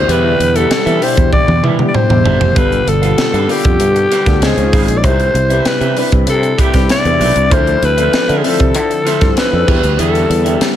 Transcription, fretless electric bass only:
0.08 0.34 E2 loud
0.39 0.64 E2 medium
0.70 muted fretless electric bass stroke medium
0.86 0.99 E3 medium
1.17 1.30 E2 medium
1.48 1.60 E2 loud
1.63 1.88 E3 loud
2.10 2.22 E2 medium
2.25 2.41 G1 medium
2.41 2.53 F1 medium
2.56 2.81 G1 loud
2.87 3.12 G1 loud
3.33 3.46 G2 medium
3.65 3.77 F2 medium
3.80 4.05 G2 loud
4.27 4.39 D2 medium
4.42 4.54 C#2 loud
4.57 4.70 C#2 medium
4.73 4.86 G#1 medium
4.88 5.04 A#1 loud
5.04 5.29 C2 medium
5.34 5.59 C2 loud
5.81 5.93 C3 loud
6.12 6.25 C2 medium
6.27 6.53 C3 loud
6.74 6.87 C2 medium
7.05 7.18 E2 medium
7.20 7.33 B1 loud
7.36 7.51 C2 loud
7.51 7.76 D2 loud
7.82 8.07 D2 loud
8.13 muted fretless electric bass stroke soft
8.29 8.42 D3 medium
8.60 8.75 C3 medium
8.75 9.00 D3 loud
9.21 9.34 G2 medium
9.53 9.65 F2 medium
9.68 9.81 E2 loud
9.84 9.96 D2 medium
9.99 10.24 E2 medium
10.30 10.55 E2 loud
10.61 muted fretless electric bass stroke medium

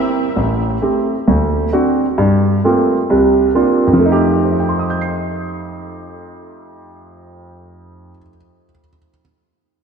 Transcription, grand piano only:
0.00 0.23 A#3 medium
0.00 0.24 C4 soft
0.00 0.24 E4 medium
0.36 0.76 A1 medium
0.82 1.14 A3 medium
0.82 1.14 C4 medium
0.82 1.14 G4 medium
1.28 1.67 D2 medium
1.73 2.05 C4 medium
1.73 2.05 D4 soft
1.73 2.05 F#4 medium
2.18 2.58 G2 medium
2.64 2.96 A3 medium
2.64 2.96 A#3 medium
2.64 2.96 C4 medium
2.64 2.96 F4 soft
2.64 2.97 G4 medium
3.10 3.49 C2 medium
3.10 3.49 C3 medium
3.55 3.87 A#3 medium
3.55 3.87 C4 soft
3.55 3.87 D4 soft
3.55 3.87 F4 medium
3.87 8.10 F2 medium
3.93 8.16 F3 medium
3.99 8.22 A3 medium
4.06 8.28 D#4 medium
4.12 8.35 G4 medium
4.44 8.63 C5 soft
4.52 8.71 D#5 soft
4.60 8.79 G5 soft
4.69 8.88 C6 soft
4.79 8.98 D#6 soft
4.90 9.09 G6 soft
5.01 9.20 C7 soft

